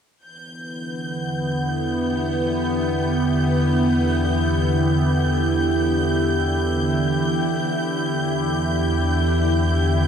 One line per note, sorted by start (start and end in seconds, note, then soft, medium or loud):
0.23 7.57 E2 medium
0.23 10.07 D3 medium
0.23 10.07 E3 medium
0.23 10.07 B3 medium
0.23 10.07 G6 medium
0.58 7.63 B3 medium
0.63 10.07 E4 medium
1.30 10.07 G4 medium
7.62 10.07 E2 medium